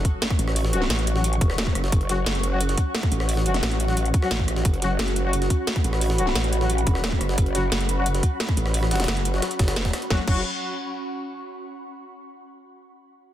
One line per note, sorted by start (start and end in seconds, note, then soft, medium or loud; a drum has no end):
0.00 10.09 C#4 medium
0.00 10.11 F#4 medium
0.00 10.10 F#5 medium
0.00 4.78 C#6 medium
0.00 impact medium
0.05 kick medium
0.05 closed hi-hat medium
0.22 snare loud
0.22 closed hi-hat medium
0.30 kick loud
0.30 cross-stick soft
0.30 closed hi-hat soft
0.39 0.89 A1 loud
0.39 closed hi-hat medium
0.48 cross-stick soft
0.48 snare soft
0.56 closed hi-hat medium
0.56 open hi-hat medium
0.65 snare medium
0.73 0.81 F#3 medium
0.73 0.81 C#4 medium
0.73 0.81 F#4 loud
0.73 closed hi-hat medium
0.82 snare soft
0.90 1.40 A1 medium
0.90 snare loud
0.90 closed hi-hat medium
0.99 closed hi-hat soft
1.07 closed hi-hat medium
1.16 1.24 F#3 medium
1.16 1.24 C#4 medium
1.16 1.24 F#4 medium
1.16 snare medium
1.24 closed hi-hat medium
1.33 closed hi-hat soft
1.41 1.74 E1 loud
1.41 kick loud
1.41 closed hi-hat medium
1.50 cross-stick soft
1.50 snare soft
1.58 snare loud
1.58 closed hi-hat medium
1.67 kick medium
1.75 1.91 F#1 medium
1.75 cross-stick soft
1.75 closed hi-hat medium
1.84 snare medium
1.92 2.25 F#1 loud
1.92 kick loud
1.92 closed hi-hat medium
2.01 closed hi-hat soft
2.09 2.17 F#3 loud
2.09 2.17 C#4 medium
2.09 2.17 F#4 loud
2.09 snare soft
2.09 closed hi-hat medium
2.26 2.76 F#1 loud
2.26 snare loud
2.26 closed hi-hat medium
2.35 closed hi-hat soft
2.43 closed hi-hat medium
2.52 2.60 F#3 medium
2.52 2.60 C#4 medium
2.52 2.60 F#4 loud
2.61 closed hi-hat medium
2.69 snare soft
2.69 closed hi-hat soft
2.78 kick medium
2.78 closed hi-hat medium
2.95 snare loud
2.95 closed hi-hat medium
3.03 kick loud
3.03 cross-stick soft
3.03 closed hi-hat soft
3.12 3.61 A1 medium
3.12 closed hi-hat medium
3.20 cross-stick soft
3.20 snare soft
3.29 closed hi-hat medium
3.29 open hi-hat medium
3.37 snare medium
3.46 3.54 F#3 medium
3.46 3.54 C#4 medium
3.46 3.54 F#4 loud
3.46 closed hi-hat medium
3.54 snare soft
3.54 closed hi-hat soft
3.63 4.13 A1 medium
3.63 snare loud
3.63 closed hi-hat medium
3.71 closed hi-hat soft
3.80 closed hi-hat medium
3.88 3.96 F#3 medium
3.88 3.96 C#4 medium
3.88 3.96 F#4 medium
3.88 snare soft
3.97 closed hi-hat medium
4.05 closed hi-hat soft
4.14 kick loud
4.14 closed hi-hat medium
4.22 4.30 F#3 medium
4.22 4.30 C#4 medium
4.22 4.30 F#4 loud
4.22 cross-stick soft
4.22 snare soft
4.31 4.64 A1 loud
4.31 snare loud
4.31 closed hi-hat medium
4.39 kick medium
4.48 cross-stick soft
4.48 closed hi-hat medium
4.57 snare medium
4.65 4.98 F#1 loud
4.65 10.11 B5 medium
4.65 kick loud
4.65 closed hi-hat medium
4.74 closed hi-hat soft
4.82 4.90 F#3 loud
4.82 4.90 C#4 medium
4.82 4.90 F#4 loud
4.82 snare soft
4.82 closed hi-hat medium
4.99 5.49 F#1 loud
4.99 snare loud
4.99 closed hi-hat medium
5.08 closed hi-hat soft
5.16 closed hi-hat medium
5.25 5.33 F#3 medium
5.25 5.33 C#4 medium
5.25 5.33 F#4 loud
5.33 closed hi-hat medium
5.42 snare soft
5.42 closed hi-hat soft
5.50 kick medium
5.50 closed hi-hat medium
5.67 snare loud
5.67 closed hi-hat medium
5.76 kick loud
5.76 cross-stick soft
5.76 closed hi-hat soft
5.84 6.34 A1 loud
5.84 closed hi-hat medium
5.93 cross-stick soft
5.93 snare soft
6.01 closed hi-hat medium
6.01 open hi-hat medium
6.10 snare medium
6.18 6.26 F#3 loud
6.18 6.26 C#4 medium
6.18 6.26 F#4 loud
6.18 closed hi-hat medium
6.27 snare soft
6.36 6.85 A1 loud
6.36 snare loud
6.36 closed hi-hat medium
6.44 closed hi-hat soft
6.53 closed hi-hat medium
6.61 6.69 F#3 medium
6.61 6.69 C#4 medium
6.61 6.69 F#4 medium
6.61 snare medium
6.70 closed hi-hat medium
6.78 closed hi-hat soft
6.87 7.19 E1 loud
6.87 kick loud
6.87 closed hi-hat medium
6.95 cross-stick soft
6.95 snare soft
7.04 snare loud
7.04 closed hi-hat medium
7.12 kick medium
7.21 7.36 F#1 loud
7.21 cross-stick soft
7.21 closed hi-hat medium
7.29 snare medium
7.38 7.71 F#1 loud
7.38 kick loud
7.38 closed hi-hat medium
7.38 closed hi-hat loud
7.46 closed hi-hat soft
7.55 7.63 F#3 loud
7.55 7.63 C#4 medium
7.55 7.63 F#4 loud
7.55 snare soft
7.55 closed hi-hat medium
7.72 8.22 F#1 loud
7.72 snare loud
7.72 closed hi-hat medium
7.80 closed hi-hat soft
7.89 closed hi-hat medium
7.97 8.05 F#3 medium
7.97 8.05 C#4 medium
7.97 8.05 F#4 loud
8.06 closed hi-hat medium
8.14 snare soft
8.14 closed hi-hat soft
8.23 kick medium
8.23 closed hi-hat medium
8.40 snare loud
8.40 closed hi-hat medium
8.49 kick loud
8.49 cross-stick soft
8.49 closed hi-hat soft
8.57 9.07 A1 medium
8.57 closed hi-hat medium
8.66 cross-stick soft
8.66 snare soft
8.74 closed hi-hat loud
8.74 open hi-hat medium
8.83 cross-stick soft
8.83 snare medium
8.91 8.99 F#3 medium
8.91 8.99 C#4 medium
8.91 8.99 F#4 loud
8.91 snare medium
8.91 closed hi-hat medium
8.95 snare medium
8.95 closed hi-hat medium
9.00 snare soft
9.00 snare medium
9.00 closed hi-hat soft
9.00 closed hi-hat medium
9.04 snare medium
9.04 closed hi-hat medium
9.08 9.41 F#1 loud
9.08 snare loud
9.08 closed hi-hat medium
9.17 closed hi-hat soft
9.25 closed hi-hat medium
9.34 9.42 F#3 medium
9.34 9.42 C#4 medium
9.34 9.42 F#4 medium
9.34 snare soft
9.42 cross-stick soft
9.42 snare loud
9.42 closed hi-hat medium
9.42 closed hi-hat loud
9.51 closed hi-hat soft
9.59 9.92 F#1 loud
9.59 kick loud
9.59 snare loud
9.59 closed hi-hat medium
9.68 cross-stick soft
9.68 snare loud
9.68 closed hi-hat medium
9.76 snare loud
9.76 closed hi-hat loud
9.76 closed hi-hat medium
9.85 kick medium
9.85 snare loud
9.85 closed hi-hat medium
9.93 cross-stick soft
9.93 snare loud
9.93 closed hi-hat medium
10.02 closed hi-hat soft
10.10 10.20 F#1 loud
10.10 10.20 F#3 medium
10.10 11.43 C#4 medium
10.10 10.20 C#4 medium
10.10 10.20 F#4 loud
10.10 kick loud
10.10 snare medium
10.15 11.43 F#4 medium
10.21 11.43 F#5 medium
10.26 10.43 F#1 loud
10.26 10.40 F#3 medium
10.26 10.40 C#4 medium
10.26 10.40 F#4 loud
10.26 11.43 C#6 medium
10.26 kick loud
10.26 crash medium